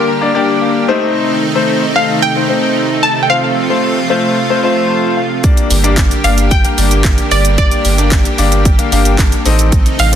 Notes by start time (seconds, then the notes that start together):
Already playing: D3 G3 A#3 G4 D5
0.08 A#5
0.21 A#3 D4 G4 D5
0.35 A#3 D4 G4 D5 G5
0.62 F5
0.88 C3 D#3 A3 C4 D#4 C5 D#5
1.55 A3 C4 D#4 C5
1.95 A3 C4 D#4 A4 F5
2.22 G5
2.36 A3 C4 D#4 C5
2.49 A3 C4 D#4 C5
3.03 A5
3.23 G5
3.29 F3 A3 C4 F4 C5 F5
3.70 A3 C4 F4 C5
4.10 A3 C4 F4 C5
4.50 A3 C4 F4 C5
4.63 A3 C4 F4 C5 C6
4.90 A5
5.17 F5
5.44 D3 G3 A#3 D4 G4 D5, kick, closed hi-hat, shaker
5.57 closed hi-hat, shaker
5.71 G1, open hi-hat, shaker
5.84 A#3 D4 G4 D5, closed hi-hat, shaker
5.97 kick, snare, clap, closed hi-hat, shaker
6.11 closed hi-hat, shaker
6.24 G1 A#3 D4 G4 D5 F5, open hi-hat, shaker
6.38 closed hi-hat, shaker
6.51 G5, kick, closed hi-hat, shaker
6.64 A#3 D4 G4 A#4, closed hi-hat, shaker
6.78 G1 A#3 D4 G4 D5, open hi-hat, shaker
6.91 closed hi-hat, shaker
7.04 kick, snare, clap, closed hi-hat, shaker
7.18 closed hi-hat, shaker
7.31 G1 D5, open hi-hat, shaker
7.45 closed hi-hat, shaker
7.58 A#3 D4 G4 D5, kick, closed hi-hat, shaker
7.71 closed hi-hat, shaker
7.85 G1, open hi-hat, shaker
7.98 A#3 D4 G4 D5, closed hi-hat, shaker
8.12 kick, snare, clap, closed hi-hat, shaker
8.25 closed hi-hat, shaker
8.38 G1 A#3 D4 G4 D5 F5, open hi-hat, shaker
8.52 closed hi-hat, shaker
8.65 G5, kick, closed hi-hat, shaker
8.78 A#3 D4 G4 F5, closed hi-hat, shaker
8.92 G1 A#3 D4 G4 F5, open hi-hat, shaker
9.05 closed hi-hat, shaker
9.19 kick, snare, clap, closed hi-hat, shaker
9.32 closed hi-hat, shaker
9.45 A1 C3 D#3 A3 C4 D#4 A4 D#5, open hi-hat, shaker
9.59 closed hi-hat, shaker
9.72 kick, closed hi-hat, shaker
9.86 closed hi-hat, shaker
9.99 A1 F5, open hi-hat, shaker